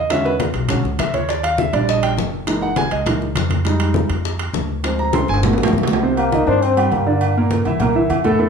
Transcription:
Already playing: upright bass E2, grand piano D#5
0.10 grand piano D3 F#3 G#3 C#4 E5, high bongo, high conga, high timbale
0.25 grand piano B4, high bongo, high conga
0.40 high bongo, high conga, high timbale
0.54 upright bass B1, high bongo, high conga, high timbale
0.69 grand piano D3 F#3 G#3 C#4, high bongo, high conga, low conga, high timbale
0.84 upright bass C#2, high bongo, high conga
0.99 upright bass D#2, grand piano E5, high bongo, low bongo, high conga, high timbale
1.14 grand piano C#5, high conga, high timbale
1.28 grand piano D5, high bongo, high conga, high timbale
1.43 grand piano F5, high bongo, high conga, high timbale
1.58 grand piano E5, high bongo, high conga
1.73 upright bass A#1, grand piano F3 G3 D4 D5, high bongo, high conga, high timbale
1.88 grand piano D#5, high bongo, high conga
2.02 grand piano G5, high bongo, high conga, high timbale
2.17 upright bass F#1, high bongo, low bongo, high conga
2.32 high conga
2.47 grand piano E3 G#3 A#3 D#4, high bongo, high conga, high timbale
2.61 grand piano F#5, high bongo, high conga
2.76 grand piano G#5, high bongo, high conga, high timbale
2.91 upright bass C#2, grand piano D#5, high bongo, high conga, high timbale
3.06 grand piano E3 G#3 A#3 D#4, high bongo, high conga, low conga, high timbale
3.21 high bongo, high conga
3.35 upright bass F2, high bongo, low bongo, high conga, high timbale
3.50 high conga, high timbale
3.65 grand piano G3 G#3 D#4, high bongo, high conga, high timbale
3.80 high bongo, high conga, high timbale
3.94 high bongo, high conga
4.09 upright bass F2, high bongo, high conga, high timbale
4.24 high bongo, high conga
4.39 high bongo, high conga, high timbale
4.53 upright bass D2, high bongo, low bongo, high conga
4.68 high conga
4.83 grand piano F3 G#3 C4, high bongo, high conga, high timbale
4.98 grand piano A#5, high bongo, high conga
5.13 grand piano C6, high bongo, high conga, high timbale
5.28 upright bass G1, grand piano G#5, high bongo, high conga
5.34 high timbale
5.43 grand piano D#3 F3 B3, high bongo, high conga, low conga, low timbale
5.53 high timbale
5.58 upright bass A#1, high bongo, high conga
5.63 low timbale
5.68 low bongo
5.73 upright bass C2, high conga
5.78 low bongo
5.83 low timbale
5.88 low bongo, high conga
5.93 low timbale
6.03 grand piano C3 C4 C5, high conga
6.17 trombone A#3, high conga, low agogo
6.32 grand piano D#3 D#4 D#5, high conga, low agogo
6.47 upright bass G2, grand piano C4 C5 C6, trombone D4, high conga
6.62 trombone C4, high conga, low agogo
6.77 grand piano G3 G4 G5, high conga, low agogo
6.92 upright bass G2, trombone A#3, high conga, low agogo
7.06 grand piano D3 D4 D5, high conga
7.21 high conga, low agogo
7.36 grand piano A#2 A#3 A#4, high conga
7.51 high conga, low agogo
7.65 upright bass C2, grand piano E3 E4 E5, high conga, low agogo
7.80 grand piano A#2 A#3 A#4, high conga, low conga, low agogo
7.95 grand piano E3 E4 E5, high conga
8.10 upright bass F2, high conga, low agogo
8.24 grand piano A2 A3 A4, high conga, low agogo
8.39 grand piano A2 A3 A4, high conga

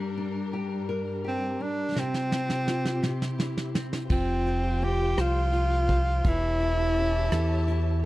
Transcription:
Already playing: string section G2 G3 D4 A#4, nylon-string guitar G3 D4 A#4
0.17 nylon-string guitar D4
0.53 nylon-string guitar G4
0.89 nylon-string guitar A#4
1.24 tenor saxophone C4, nylon-string guitar G4
1.60 nylon-string guitar D4, tenor saxophone D4
1.95 string section C3 C4 F4 G4, nylon-string guitar C3, snare
1.99 tenor saxophone C4
2.14 snare
2.32 nylon-string guitar C4, snare
2.50 snare
2.68 nylon-string guitar F4, snare
2.85 snare
3.03 nylon-string guitar C3, string section C4 E4, snare
3.22 snare
3.38 nylon-string guitar E4, snare
3.57 snare
3.74 nylon-string guitar C4, snare
3.93 snare
4.10 fingered electric bass F1, nylon-string guitar F3, tenor saxophone C4, string section F4 G4 C5 G5, kick, crash
4.45 nylon-string guitar F4, closed hi-hat
4.82 nylon-string guitar C4, tenor saxophone G4, closed hi-hat
5.17 fingered electric bass C2, tenor saxophone F4, nylon-string guitar C5, cross-stick, closed hi-hat
5.53 nylon-string guitar F4, closed hi-hat
5.89 nylon-string guitar C5, kick, closed hi-hat
6.24 fingered electric bass E1, nylon-string guitar E3, string section G4 C#5 E5 A5, kick, closed hi-hat
6.28 tenor saxophone E4
6.60 nylon-string guitar E4, closed hi-hat
6.96 nylon-string guitar C#4, closed hi-hat
7.32 fingered electric bass E2, nylon-string guitar A4, cross-stick, closed hi-hat
7.67 nylon-string guitar E4, closed hi-hat

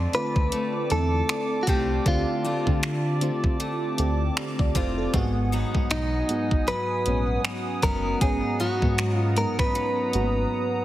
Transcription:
Already playing: fm electric piano D3 A3 C4 F4, steel-string acoustic guitar D3 A3 C4 F4, analog synth pad C4 D5 A5 D6
0.13 fm electric piano D3 A3 C4 F4, clean electric guitar B4, closed hi-hat
0.36 sub bass D2, kick
0.52 steel-string acoustic guitar A3, closed hi-hat
0.90 sub bass E2, fm electric piano D3 A3 C4 E4, clean electric guitar A4, closed hi-hat
1.29 finger snap, closed hi-hat
1.63 clean electric guitar F#4
1.67 sub bass C2, steel-string acoustic guitar A3 C4 F4, clean electric guitar G4, kick, closed hi-hat
2.05 sub bass D2, fm electric piano D3 A3 C4 G4, steel-string acoustic guitar D3, clean electric guitar F4, kick, closed hi-hat
2.45 sub bass D3, steel-string acoustic guitar A3 C4 F4
2.66 fm electric piano D3 A3 C4 F4, sub bass D3, kick
2.83 steel-string acoustic guitar A3, finger snap, closed hi-hat
3.21 fm electric piano D3 A3 C4 F4, closed hi-hat
3.44 kick
3.60 steel-string acoustic guitar A3, closed hi-hat
3.98 sub bass D2, fm electric piano D3 A3 C4 G4, closed hi-hat
4.37 finger snap, closed hi-hat
4.59 sub bass D2, fm electric piano F4 D5, kick
4.75 sub bass F1, steel-string acoustic guitar A3 C4 F4, fm electric piano E4 C5, kick, closed hi-hat
4.98 fm electric piano C4 A4
5.13 sub bass G#1, fm electric piano G#2 G#3 B3 F#4, steel-string acoustic guitar G#2, analog synth pad B3 F#5 G#5 D#6, kick, closed hi-hat
5.52 steel-string acoustic guitar F#3 B3 D#4
5.74 sub bass B1, fm electric piano G#2 G#3 B3 F#4, kick
5.91 sub bass B1, steel-string acoustic guitar F#3, clean electric guitar D#4, finger snap, closed hi-hat
6.29 fm electric piano G#2 G#3 B3 F#4, closed hi-hat
6.51 sub bass G#1, kick
6.67 steel-string acoustic guitar F#3, clean electric guitar B4, closed hi-hat
7.06 sub bass A#1, fm electric piano G#2 G#3 B3 C#4, closed hi-hat
7.45 finger snap, closed hi-hat
7.83 sub bass F#1, steel-string acoustic guitar F#3 B3 D#4, clean electric guitar A#4, kick, closed hi-hat
8.21 sub bass G#1, fm electric piano G#2 G#3 B3 C#4, steel-string acoustic guitar G#2, clean electric guitar G#4, analog synth pad A#5, kick, closed hi-hat
8.60 sub bass G#2, steel-string acoustic guitar F#3 B3 D#4, clean electric guitar F#4
8.82 fm electric piano G#2 G#3 B3 F#4, sub bass G#2, kick
8.98 steel-string acoustic guitar F#3, finger snap, closed hi-hat
9.14 clean electric guitar F4
9.36 fm electric piano G#2 G#3 B3 D#4, clean electric guitar A#4, closed hi-hat
9.59 clean electric guitar B4, finger snap, kick
9.75 steel-string acoustic guitar F#3, closed hi-hat
10.13 sub bass G#1, fm electric piano G#2 G#3 A#3 F#4, closed hi-hat
10.21 fm electric piano B3

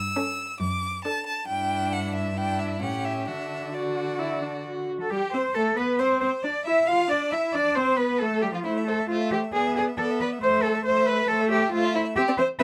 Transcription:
Already playing: violin E6
0.16 viola C#4, violin A4
0.60 cello F#2, violin D6
1.04 viola D4, violin A4 A5
1.26 violin A5
1.48 cello G2, viola D4, violin E4 G5
1.93 violin F#5
2.15 violin E5
2.36 viola D4, violin E4 G5
2.59 violin E5
2.81 cello A2, viola C#4, violin G4 F#5
3.05 violin E5
3.26 cello D3, viola D4, violin F#4 E5
3.72 viola F#4, violin F#4 D5
4.19 viola E4
4.42 viola D4
4.65 viola F#4
5.01 cello A4, violin A4
5.10 viola G3, cello G4, violin G4
5.33 viola C4, cello C5, violin C5
5.54 viola A3, violin A4, cello A4
5.77 viola B3, cello B4, violin B4
5.99 viola C4, violin C5, cello C5
6.21 viola C4, cello C5, violin C5
6.43 viola D4, violin D5, cello D5
6.65 viola E4, violin E5, cello E5
6.87 viola F4, violin F5, cello F5
7.09 viola D4, violin D5, cello D5
7.31 viola E4, violin E5, cello E5
7.52 viola D4, violin D5, cello D5
7.75 viola C4, cello C5, violin C5
7.97 viola B3, cello B4, violin B4
8.19 viola A3, cello A4, violin A4
8.42 viola G3, cello G4, violin G4
8.54 viola F3, violin F4, cello F4
8.64 viola A3, cello E4, violin E4 C5
8.77 violin E5
8.87 cello A4, violin A4 C5
9.00 violin E5
9.08 viola A3, cello F4, violin F4 C5
9.21 violin E5
9.31 cello G4, violin G4 C5
9.44 violin E5
9.53 viola B3, cello G#4, violin G#4 D5
9.66 violin E5
9.75 cello G#4, violin G#4 D5
9.88 violin E5
9.98 viola B3, cello A4, violin A4 D5
10.11 violin E5
10.20 cello B4, violin B4 D5
10.32 violin E5
10.42 viola A3, cello C5, violin C5
10.53 violin E5
10.63 cello A4, violin A4 C5
10.75 violin E5
10.85 viola A3, cello C5, violin C5
10.97 violin E5
11.07 cello B4, violin B4 C5
11.19 violin E5
11.28 viola A3, cello A4, violin A4 C5
11.40 violin E5
11.50 cello G4, violin G4 C5
11.63 violin E5
11.72 viola A3, cello F4, violin F4 C5
11.84 violin E5
11.95 cello E4, violin E4 C5
12.05 violin E5
12.16 viola C4, cello G4, violin G4 E5
12.28 viola C4, violin D5
12.38 viola C4, cello C5, violin C5 E5
12.59 viola C4, cello B4, violin E5

